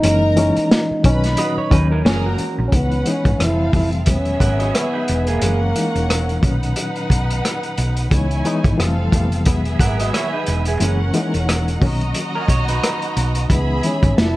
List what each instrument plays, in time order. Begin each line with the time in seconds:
Already playing: french horn D#4
0.03 fingered electric bass F#1, reed electric piano E3 G#3 A#3 C#4, violin section A#4 A#5, closed hi-hat
0.37 reed electric piano E3 G#3 A#3 C#4, closed hi-hat
0.57 muted fingered electric bass stroke, closed hi-hat
0.71 snare, closed hi-hat
0.91 muted fingered electric bass stroke
1.03 fingered electric bass B1, reed electric piano A#2 D#3 F#3 C#4, violin section B4 B5, kick, closed hi-hat
1.24 snare, closed hi-hat
1.37 clean electric guitar F#4 D#5, closed hi-hat
1.58 clean electric guitar C#5, muted fingered electric bass stroke
1.71 fingered electric bass D#2, reed electric piano D#3 F#3 A#3 C#4, clean electric guitar D#4 B4, kick, closed hi-hat
1.91 clean electric guitar C#4 A#4
2.04 fingered electric bass F#1, reed electric piano E3 G#3 A#3 C#4, clean electric guitar G#4, violin section A#4 A#5, snare, closed hi-hat
2.26 clean electric guitar A#3 F#4
2.38 muted fingered electric bass stroke, closed hi-hat
2.58 fingered electric bass A#1
2.68 reed electric piano E3, french horn C#4, violin section C#4 B4
2.72 fingered electric bass C#2, reed electric piano G#3 B3 D#4, french horn B3, violin section F#5, kick, closed hi-hat
2.92 closed hi-hat
3.06 reed electric piano E3 G#3 B3 D#4, french horn C#4, closed hi-hat
3.25 fingered electric bass G#1, kick, closed hi-hat
3.38 fingered electric bass F1, reed electric piano E3 G3 A3 C4, violin section C4 A4 F5, cross-stick, closed hi-hat
3.44 french horn E4
3.72 fingered electric bass F1, reed electric piano E3 G3 A3 C4, french horn E4, kick, open hi-hat
3.92 closed hi-hat
4.06 fingered electric bass E1, reed electric piano D#3 F#3 G#3 A#3, violin section B3 G#4 E5, french horn C#4, kick, closed hi-hat
4.15 reed electric piano B3
4.25 closed hi-hat
4.40 fingered electric bass G#1, clean electric guitar A#4 F#5, kick, closed hi-hat
4.59 clean electric guitar F#4 D#5, closed hi-hat
4.74 french horn B3, clean electric guitar E4 C#5, cross-stick, closed hi-hat
4.93 clean electric guitar D#4 B4
5.08 fingered electric bass E1, closed hi-hat
5.27 french horn A#3, clean electric guitar B3 G#4, closed hi-hat
5.41 fingered electric bass F#1, reed electric piano E3 G#3 A#3 C#4, violin section C#4 A#4 F#5, closed hi-hat
5.75 reed electric piano E3 G#3 A#3 D#4, closed hi-hat
5.95 fingered electric bass E1, closed hi-hat
6.10 cross-stick, closed hi-hat
6.29 closed hi-hat
6.41 fingered electric bass B1, reed electric piano A#2 D#3 F#3 C#4, violin section D#4 B4 F#5, kick, closed hi-hat
6.63 closed hi-hat
6.76 closed hi-hat
6.96 closed hi-hat
7.10 fingered electric bass B1, kick, closed hi-hat
7.31 closed hi-hat
7.45 cross-stick, closed hi-hat
7.63 closed hi-hat
7.78 fingered electric bass B1, closed hi-hat
7.97 closed hi-hat
8.10 fingered electric bass C#2, reed electric piano E3 G#3 B3 D#4, violin section E4 C#5 G#5, kick, closed hi-hat
8.31 closed hi-hat
8.45 reed electric piano E3 G#3 B3 D#4, closed hi-hat
8.64 fingered electric bass G#1, kick, closed hi-hat
8.77 fingered electric bass F1, reed electric piano E3 G3 A3 C4, violin section C4 A4 F5, cross-stick, closed hi-hat
9.12 fingered electric bass F1, reed electric piano E3 G3 A3 B3, kick, cross-stick, closed hi-hat
9.32 closed hi-hat
9.45 fingered electric bass E1, reed electric piano D#3 F#3 G#3 B3, violin section B3 G#4 E5, kick, closed hi-hat
9.65 closed hi-hat
9.79 fingered electric bass G#1, clean electric guitar A#4 F#5, kick, closed hi-hat
10.00 clean electric guitar F#4 D#5, closed hi-hat
10.13 clean electric guitar E4 C#5, cross-stick, closed hi-hat
10.33 clean electric guitar D#4 B4
10.47 fingered electric bass E1, closed hi-hat
10.65 clean electric guitar B3 G#4, closed hi-hat
10.80 fingered electric bass F#1, reed electric piano E3 G#3 A#3 C#4, violin section C#4 A#4 F#5, closed hi-hat
11.14 reed electric piano E3 G#3 A#3 D#4, closed hi-hat
11.34 fingered electric bass E1, closed hi-hat
11.49 cross-stick, closed hi-hat
11.68 closed hi-hat
11.79 fingered electric bass B1, reed electric piano D#3 F#3 A#3 C#4, violin section F#4 D#5 A#5, kick, open hi-hat
12.01 closed hi-hat
12.15 closed hi-hat
12.35 clean electric guitar C#4 A#4
12.48 fingered electric bass B1, clean electric guitar C#5, kick, closed hi-hat
12.68 clean electric guitar D#4 B4, closed hi-hat
12.83 cross-stick, closed hi-hat
13.02 closed hi-hat
13.17 fingered electric bass B1, closed hi-hat
13.35 closed hi-hat
13.49 fingered electric bass C#2, reed electric piano E3 G#3 B3 D#4, french horn B3, violin section G#4 E5 B5, kick, closed hi-hat
13.83 reed electric piano D#3 E3 G#3 B3, french horn C#4, closed hi-hat
14.03 fingered electric bass G#1, kick, closed hi-hat
14.17 fingered electric bass F1, reed electric piano G3 A3 C4 E4, violin section E4 E5 A5, french horn E4, snare, closed hi-hat